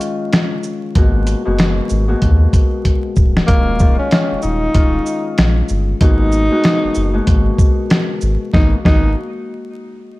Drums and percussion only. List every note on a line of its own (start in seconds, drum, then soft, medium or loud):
0.01 closed hi-hat medium
0.01 shaker medium
0.33 snare loud
0.33 closed hi-hat medium
0.63 shaker medium
0.95 kick loud
0.95 closed hi-hat loud
1.27 closed hi-hat medium
1.27 shaker medium
1.59 snare loud
1.59 closed hi-hat medium
1.90 shaker medium
2.22 kick medium
2.22 closed hi-hat medium
2.53 kick medium
2.53 closed hi-hat medium
2.53 shaker medium
2.85 kick medium
2.85 closed hi-hat medium
3.16 kick medium
3.16 shaker medium
3.37 snare medium
3.48 kick loud
3.48 closed hi-hat loud
3.79 kick loud
3.79 shaker medium
4.11 snare loud
4.11 closed hi-hat medium
4.42 shaker medium
4.74 kick medium
4.74 closed hi-hat medium
5.06 shaker medium
5.38 snare loud
5.38 closed hi-hat medium
5.69 shaker medium
6.01 kick loud
6.01 closed hi-hat medium
6.32 shaker medium
6.64 snare loud
6.64 closed hi-hat medium
6.95 shaker medium
7.27 kick medium
7.27 closed hi-hat medium
7.58 kick medium
7.58 shaker medium
7.90 snare loud
7.90 closed hi-hat medium
8.21 shaker medium
8.54 kick loud
8.54 snare medium
8.85 kick loud
8.85 snare medium